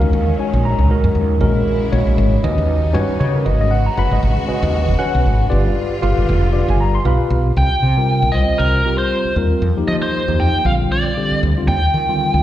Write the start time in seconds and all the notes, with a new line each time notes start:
Already playing: D#3 F#3 G#3 C#4 F#4 A#4 F5
0.01 D#2
0.13 D#2
0.39 G#3 C#4 F#4 C#5 G#5, muted fretless electric bass stroke
0.53 A#1
0.65 A#5
0.79 C#2
0.90 G#3 C#4 F#4 A#4, muted fretless electric bass stroke
1.04 F#2
1.15 D#2
1.40 A#1 C#3 G#3 A#3 C#4 E4 F#4 A#4
1.92 A#1 G#3 C#4 F#4 C#5
2.07 A#1
2.18 G#1
2.43 D#2 C#3 G3 B3 C#4 D#4 F#4 B4 D#5
2.58 D#2
2.93 G2 C#4 F#4 B4 C#5
3.09 muted fretless electric bass stroke
3.20 C#3 C#5
3.36 A#4
3.45 G#1 G#3 C#4 F#4 B4 D#5
3.61 D#5
3.71 F#5
3.86 A#5
3.97 F#1 C#4 F#4 B4 F#5 B5
4.11 G#1 D#5
4.23 G#1
4.48 C#4 F#4 B4 D#5, muted fretless electric bass stroke
4.63 D#2
4.88 F#1
4.99 C#4 F#4 B4 F#5
5.15 B1
5.26 G#1
5.49 G1 D3 G3 F4 G4 B4 D5
6.02 G1 F4 G4 B4 F5
6.17 G1
6.29 F1
6.53 F4 G4 B4 D5
6.57 F5
6.68 G1 G#5
6.81 A#5
6.95 C6
7.05 B1 F4 G4 B4 F5 B5
7.19 muted fretless electric bass stroke
7.30 B1
7.57 C2 G5
7.83 C3
7.97 G3 C4 F4 A#4
8.22 C2
8.32 C2 G3 C4 F4 C5 D#5
8.48 muted fretless electric bass stroke
8.58 C2 A#4
8.85 G3 C4 F4 G4
8.98 C5
9.25 muted fretless electric bass stroke
9.36 D#2 G3 C4 F4 A#4
9.51 muted fretless electric bass stroke
9.62 F2
9.77 F3 A#3 D#4 G4
9.88 F3 D#5
10.02 C5
10.28 F2 F3 A#3 D#4 G4
10.40 F2 G5
10.54 muted fretless electric bass stroke
10.65 A#1 D3 G3 C4 F4 F5
10.92 D5
11.17 D3 G3 C4 G4
11.31 muted fretless electric bass stroke
11.43 D2
11.57 D3 G3 C4 F4, muted fretless electric bass stroke
11.68 D#2 G5
11.94 D#3
12.09 D3 G3 C4 F4
12.34 D#2